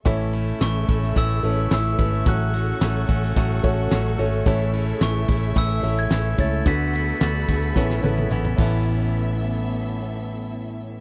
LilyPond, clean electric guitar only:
\new Staff \with { instrumentName = "Clean electric guitar" } { \time 4/4 \key a \major \tempo 4 = 109 <a, e a cis' e'>8 <a cis' e'>8 <e a cis' e'>8 <a cis' e'>8 <a, e a cis' e'>8 <a cis' e'>8 <e a cis' e'>8 <a cis' e'>8 | <a, fis a cis' fis'>8 <a cis' fis'>8 <fis a cis' fis'>8 <a cis' fis'>8 <a, fis a cis' fis'>8 <a cis' fis'>8 <fis a cis' fis'>8 <a cis' fis'>8 | <a, e a cis' e'>8 <a cis' e'>8 <e a cis' e'>8 <a cis' e'>8 <a, e a cis' e'>8 <a cis' e'>8 <e a cis' e'>8 <a cis' e'>8 | <d a b fis'>8 <a b fis'>8 <d a b fis'>8 <a b fis'>8 <a, e b cis' e'>8 <b cis' e'>8 <e b cis' e'>8 <a, e b cis' e'>8~ |
<a, e b cis' e'>1 | }